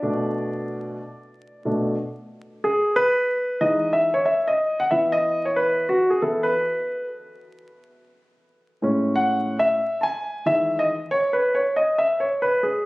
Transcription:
Already playing: D5
0.02 B2 A3 D4
1.65 B2 A3 D4
2.64 G#4
2.96 B4
3.61 E3 G#3 D#4 D#5
3.93 E5
4.14 C#5
4.25 E5
4.47 D#5
4.80 F#5
4.91 E3 B3 E4 E5
5.12 D#5
5.45 C#5
5.56 B4
5.89 F#4
6.10 G#4
6.22 E3 B3 E4 A4
6.43 B4
8.82 A2 G#3 C#4
9.16 F#5
9.59 E5
10.01 G#5 A5
10.46 D#3 E3 G#3 E5
10.79 D#5
11.11 C#5
11.33 B4
11.55 C#5
11.76 D#5
11.98 E5
12.20 C#5
12.42 B4
12.63 G#4

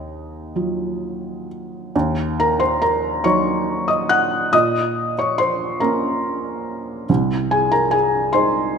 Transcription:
Already playing: D#2 D#5
0.56 F#3 F4
1.96 D#2
2.40 A#4 A#5
2.60 C5 C6
2.82 A#4 A#5
3.24 F#3 D#4 C#5 C#6
3.88 D#5 D#6
4.09 F#5 F#6
4.53 A#2 D#5 D#6
5.19 C#5 C#6
5.38 C5 C6
5.80 A#3 C#4 A#4 A#5
7.09 C2
7.51 G#4 G#5
7.72 A#4 A#5
7.91 G#4 G#5
8.33 G#3 D#4 C5 C6

